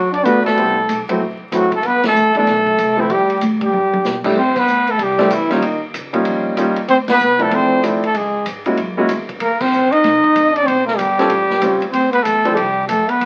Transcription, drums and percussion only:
0.14 ride
0.25 kick, hi-hat pedal, ride
0.46 snare, ride
0.57 kick, ride
0.89 kick, hi-hat pedal, ride
1.09 ride
1.20 kick
1.52 kick, hi-hat pedal, ride
1.72 kick, ride
1.83 kick, ride
2.04 snare, ride
2.15 hi-hat pedal
2.35 ride
2.47 kick, snare, ride
2.67 kick
2.78 kick, hi-hat pedal, ride
3.10 kick, ride
3.30 ride
3.41 kick, hi-hat pedal, ride
3.61 kick, ride
3.73 high tom
3.93 high tom
4.05 snare, hi-hat pedal
4.24 kick, crash
4.36 kick
4.56 kick, crash
4.68 hi-hat pedal
4.87 ride
4.99 kick, ride
5.19 snare, ride
5.30 kick, hi-hat pedal, ride
5.50 snare, ride
5.62 kick, ride
5.94 kick, hi-hat pedal, ride
6.14 kick, ride
6.25 kick, ride
6.57 kick, hi-hat pedal, ride
6.76 ride
6.88 kick, ride
7.08 snare, ride
7.19 hi-hat pedal
7.39 ride
7.51 kick, ride
7.83 kick, hi-hat pedal, ride
8.03 ride
8.14 kick, ride
8.46 kick, hi-hat pedal, ride
8.66 ride
8.77 kick, ride
9.09 kick, hi-hat pedal, ride
9.29 kick, ride
9.40 kick, ride
9.61 kick, crash
9.72 hi-hat pedal
9.92 ride
10.04 kick, snare, ride
10.24 kick
10.35 kick, hi-hat pedal, ride
10.56 ride
10.67 kick, ride
10.88 snare
10.99 kick, hi-hat pedal, ride
11.19 snare, ride
11.30 kick, ride
11.50 snare
11.62 kick, hi-hat pedal, ride
11.82 ride
11.93 kick, ride
12.13 ride
12.25 kick, hi-hat pedal, ride
12.45 ride
12.57 kick, ride
12.88 kick, hi-hat pedal, ride
13.09 ride
13.20 kick, ride

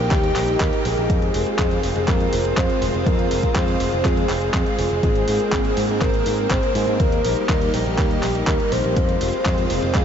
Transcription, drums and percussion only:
0.11 kick, clap, closed hi-hat
0.24 closed hi-hat
0.36 clap, open hi-hat
0.48 closed hi-hat
0.60 kick, clap, closed hi-hat
0.73 closed hi-hat
0.85 open hi-hat
0.97 closed hi-hat
1.10 kick, closed hi-hat
1.22 closed hi-hat
1.34 open hi-hat
1.47 closed hi-hat
1.59 kick, clap, closed hi-hat
1.71 closed hi-hat
1.83 open hi-hat
1.96 closed hi-hat
2.08 kick, clap, closed hi-hat
2.20 closed hi-hat
2.33 open hi-hat
2.45 closed hi-hat
2.57 kick, clap, closed hi-hat
2.70 closed hi-hat
2.82 open hi-hat
2.94 closed hi-hat
3.06 kick, closed hi-hat
3.19 closed hi-hat
3.31 open hi-hat
3.43 kick, closed hi-hat
3.56 kick, clap, closed hi-hat
3.68 closed hi-hat
3.80 open hi-hat
3.93 closed hi-hat
4.05 kick, clap, closed hi-hat
4.17 closed hi-hat
4.29 clap, open hi-hat
4.42 closed hi-hat
4.54 kick, clap, closed hi-hat
4.66 closed hi-hat
4.79 open hi-hat
4.91 closed hi-hat
5.03 kick, closed hi-hat
5.15 closed hi-hat
5.28 open hi-hat
5.40 closed hi-hat
5.52 kick, clap, closed hi-hat
5.65 closed hi-hat
5.77 open hi-hat
5.89 closed hi-hat
6.02 kick, clap, closed hi-hat
6.14 closed hi-hat
6.26 open hi-hat
6.38 closed hi-hat
6.51 kick, clap, closed hi-hat
6.63 closed hi-hat
6.75 open hi-hat
6.88 closed hi-hat
7.00 kick, closed hi-hat
7.12 closed hi-hat
7.25 open hi-hat
7.37 closed hi-hat
7.49 kick, clap, closed hi-hat
7.62 closed hi-hat
7.74 open hi-hat
7.86 closed hi-hat
7.98 kick, clap, closed hi-hat
8.11 closed hi-hat
8.23 clap, open hi-hat
8.35 closed hi-hat
8.47 kick, clap, closed hi-hat
8.60 closed hi-hat
8.72 open hi-hat
8.84 closed hi-hat
8.97 kick, closed hi-hat
9.09 closed hi-hat
9.21 open hi-hat
9.33 closed hi-hat
9.46 kick, clap, closed hi-hat
9.58 closed hi-hat
9.70 open hi-hat
9.82 closed hi-hat
9.95 kick, clap, closed hi-hat

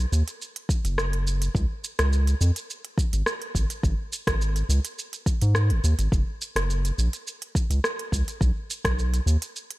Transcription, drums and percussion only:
0.13 shaker
0.28 closed hi-hat, shaker
0.42 shaker
0.56 closed hi-hat
0.69 kick, shaker
0.85 closed hi-hat, shaker
0.98 cross-stick, shaker
1.13 closed hi-hat
1.27 shaker
1.42 closed hi-hat, shaker
1.55 kick, shaker
1.84 shaker
1.99 cross-stick, closed hi-hat, shaker
2.13 shaker
2.27 closed hi-hat, shaker
2.41 shaker
2.56 closed hi-hat, shaker
2.70 shaker
2.85 closed hi-hat
2.98 kick, shaker
3.13 closed hi-hat, shaker
3.26 cross-stick, shaker
3.42 closed hi-hat
3.55 kick, shaker
3.70 closed hi-hat, shaker
3.83 kick, shaker
4.13 shaker
4.27 kick, cross-stick, closed hi-hat, shaker
4.41 shaker
4.56 closed hi-hat, shaker
4.70 shaker
4.85 closed hi-hat, shaker
4.99 shaker
5.13 closed hi-hat, shaker
5.26 kick, shaker
5.41 closed hi-hat, shaker
5.55 cross-stick, shaker
5.70 closed hi-hat
5.84 shaker
5.99 closed hi-hat, shaker
6.12 kick, shaker
6.42 shaker
6.56 cross-stick, closed hi-hat, shaker
6.70 shaker
6.85 closed hi-hat, shaker
6.99 shaker
7.13 closed hi-hat, shaker
7.27 shaker
7.42 closed hi-hat
7.55 kick, shaker
7.71 closed hi-hat, shaker
7.84 cross-stick, shaker
7.99 closed hi-hat
8.12 kick, shaker
8.28 closed hi-hat, shaker
8.41 kick, shaker
8.70 shaker
8.85 kick, cross-stick, closed hi-hat, shaker
8.99 shaker
9.14 closed hi-hat, shaker
9.28 shaker
9.42 closed hi-hat, shaker
9.56 shaker
9.71 closed hi-hat

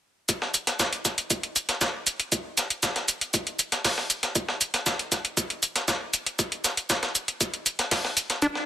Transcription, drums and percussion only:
0.29 kick, closed hi-hat, shaker
0.42 snare
0.54 closed hi-hat, shaker
0.67 snare, closed hi-hat
0.80 kick, snare, closed hi-hat, shaker
0.93 closed hi-hat
1.05 kick, snare, closed hi-hat, shaker
1.18 closed hi-hat
1.30 kick, closed hi-hat, shaker
1.43 closed hi-hat
1.56 closed hi-hat, shaker
1.69 snare, closed hi-hat
1.81 kick, snare, closed hi-hat, shaker
2.07 closed hi-hat, shaker
2.20 closed hi-hat
2.32 kick, closed hi-hat, shaker
2.57 snare, closed hi-hat, shaker
2.70 closed hi-hat
2.83 kick, snare, closed hi-hat, shaker
2.96 snare, closed hi-hat
3.08 closed hi-hat, shaker
3.21 closed hi-hat
3.34 kick, closed hi-hat, shaker
3.47 closed hi-hat
3.59 closed hi-hat, shaker
3.72 snare, closed hi-hat
3.85 kick, snare, closed hi-hat, open hi-hat
3.98 snare
4.10 closed hi-hat, shaker
4.23 snare, closed hi-hat
4.35 kick, closed hi-hat, shaker
4.48 snare
4.61 closed hi-hat, shaker
4.74 snare, closed hi-hat
4.86 kick, snare, closed hi-hat, shaker
4.99 closed hi-hat
5.12 kick, snare, closed hi-hat, shaker
5.25 closed hi-hat
5.37 kick, closed hi-hat, shaker
5.50 closed hi-hat
5.63 closed hi-hat, shaker
5.76 snare, closed hi-hat
5.88 kick, snare, closed hi-hat, shaker
6.13 closed hi-hat, shaker
6.26 closed hi-hat
6.39 kick, closed hi-hat, shaker
6.52 closed hi-hat
6.64 snare, closed hi-hat, shaker
6.77 closed hi-hat
6.90 kick, snare, closed hi-hat, shaker
7.03 snare, closed hi-hat
7.15 closed hi-hat, shaker
7.28 closed hi-hat
7.41 kick, closed hi-hat, shaker
7.54 closed hi-hat
7.66 closed hi-hat, shaker
7.79 snare, closed hi-hat
7.91 kick, snare, closed hi-hat, open hi-hat
8.05 snare
8.17 closed hi-hat, shaker
8.30 snare, closed hi-hat
8.42 kick, closed hi-hat, shaker
8.55 snare

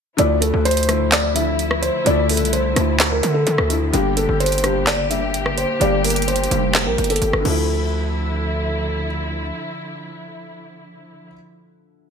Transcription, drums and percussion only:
0.18 closed hi-hat
0.42 closed hi-hat
0.65 closed hi-hat
0.71 closed hi-hat
0.77 closed hi-hat
0.83 closed hi-hat
0.89 cross-stick, closed hi-hat
1.12 snare, clap, closed hi-hat
1.36 closed hi-hat
1.59 closed hi-hat
1.71 cross-stick
1.83 closed hi-hat
2.06 closed hi-hat
2.29 closed hi-hat, open hi-hat
2.37 closed hi-hat
2.45 closed hi-hat
2.53 closed hi-hat
2.76 cross-stick, closed hi-hat
3.00 snare, clap, closed hi-hat
3.23 closed hi-hat
3.47 closed hi-hat
3.58 cross-stick
3.70 closed hi-hat
3.94 closed hi-hat
4.17 closed hi-hat
4.40 closed hi-hat
4.46 closed hi-hat
4.52 closed hi-hat
4.58 closed hi-hat
4.64 cross-stick, closed hi-hat
4.87 snare, clap, closed hi-hat
5.11 closed hi-hat
5.34 closed hi-hat
5.46 cross-stick
5.58 closed hi-hat
5.81 closed hi-hat
6.04 closed hi-hat, open hi-hat
6.10 closed hi-hat
6.16 closed hi-hat
6.22 closed hi-hat
6.28 closed hi-hat
6.36 closed hi-hat
6.44 closed hi-hat
6.51 closed hi-hat
6.75 snare, clap, closed hi-hat
6.98 closed hi-hat
7.04 closed hi-hat
7.10 closed hi-hat
7.16 closed hi-hat
7.22 closed hi-hat
7.33 cross-stick
7.45 crash

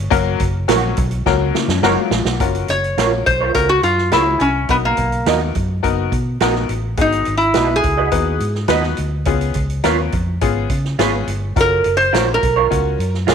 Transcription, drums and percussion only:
0.12 kick, closed hi-hat
0.40 kick, closed hi-hat
0.68 snare, closed hi-hat
0.97 kick, closed hi-hat
1.11 closed hi-hat
1.26 kick, snare
1.55 snare
1.69 snare
1.83 snare
2.11 snare
2.25 snare
2.40 kick, closed hi-hat
2.55 closed hi-hat
2.68 closed hi-hat
2.84 closed hi-hat
2.98 snare, closed hi-hat
3.27 kick, closed hi-hat
3.55 kick, closed hi-hat
3.83 closed hi-hat
3.98 snare
4.12 snare, closed hi-hat
4.40 closed hi-hat
4.69 kick, closed hi-hat
4.97 kick, closed hi-hat
5.12 closed hi-hat
5.26 snare, closed hi-hat
5.55 kick, closed hi-hat
5.84 kick, closed hi-hat
6.12 kick, closed hi-hat
6.40 snare, closed hi-hat
6.55 snare
6.69 closed hi-hat
6.97 kick, closed hi-hat
7.12 closed hi-hat
7.25 closed hi-hat
7.40 closed hi-hat
7.54 snare, closed hi-hat
7.83 kick, closed hi-hat
8.11 kick, closed hi-hat
8.40 closed hi-hat
8.55 snare
8.68 snare, closed hi-hat
8.83 snare
8.97 closed hi-hat
9.25 kick, closed hi-hat
9.41 closed hi-hat
9.54 kick, closed hi-hat
9.70 closed hi-hat
9.84 snare, closed hi-hat
10.12 kick, closed hi-hat
10.41 kick, closed hi-hat
10.70 kick, closed hi-hat
10.85 snare
10.99 snare, closed hi-hat
11.28 closed hi-hat
11.56 kick, closed hi-hat
11.84 closed hi-hat
12.00 closed hi-hat
12.14 snare, closed hi-hat
12.43 kick, closed hi-hat
12.71 kick, closed hi-hat
13.00 closed hi-hat
13.14 snare
13.28 snare, closed hi-hat

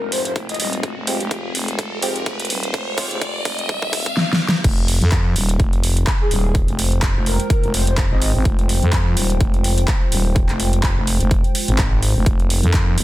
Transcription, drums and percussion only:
0.12 open hi-hat
0.25 closed hi-hat
0.36 kick, closed hi-hat
0.49 closed hi-hat
0.54 closed hi-hat
0.60 open hi-hat
0.73 closed hi-hat
0.83 kick, closed hi-hat
1.07 open hi-hat
1.21 closed hi-hat
1.31 kick, closed hi-hat
1.55 open hi-hat
1.68 closed hi-hat
1.79 kick, closed hi-hat
2.02 open hi-hat
2.16 closed hi-hat
2.26 kick, closed hi-hat
2.40 closed hi-hat
2.45 closed hi-hat
2.50 open hi-hat
2.63 closed hi-hat
2.74 kick, closed hi-hat
2.98 kick, open hi-hat
3.11 closed hi-hat
3.22 kick, closed hi-hat
3.45 kick, open hi-hat
3.59 closed hi-hat
3.69 kick, closed hi-hat
3.82 kick
3.93 kick, open hi-hat
4.06 kick, closed hi-hat
4.17 snare
4.33 snare
4.49 snare
4.64 kick, closed hi-hat, crash
4.78 closed hi-hat
4.88 open hi-hat
5.01 closed hi-hat
5.12 kick, clap, closed hi-hat
5.36 open hi-hat
5.49 closed hi-hat
5.60 kick, closed hi-hat
5.73 closed hi-hat
5.84 open hi-hat
5.97 closed hi-hat
6.07 kick, clap, closed hi-hat
6.31 open hi-hat
6.55 kick, closed hi-hat
6.68 closed hi-hat
6.79 open hi-hat
6.92 closed hi-hat
7.02 kick, clap, closed hi-hat
7.26 open hi-hat
7.40 closed hi-hat
7.50 kick, closed hi-hat
7.63 closed hi-hat
7.74 open hi-hat
7.87 closed hi-hat
7.98 kick, clap, closed hi-hat
8.22 open hi-hat
8.45 kick, closed hi-hat
8.59 closed hi-hat
8.69 open hi-hat
8.83 closed hi-hat
8.93 kick, clap, closed hi-hat
9.17 open hi-hat
9.30 closed hi-hat
9.41 kick, closed hi-hat
9.54 closed hi-hat
9.64 open hi-hat
9.78 closed hi-hat
9.88 kick, clap, closed hi-hat
10.12 open hi-hat
10.36 kick, closed hi-hat
10.49 clap, closed hi-hat
10.60 open hi-hat
10.73 closed hi-hat
10.83 kick, clap, closed hi-hat
11.07 open hi-hat
11.20 closed hi-hat
11.31 kick, closed hi-hat
11.44 closed hi-hat
11.55 open hi-hat
11.68 closed hi-hat
11.78 kick, clap, closed hi-hat
12.03 open hi-hat
12.26 kick, closed hi-hat
12.40 closed hi-hat
12.50 open hi-hat
12.63 closed hi-hat
12.74 kick, clap, closed hi-hat
12.98 open hi-hat

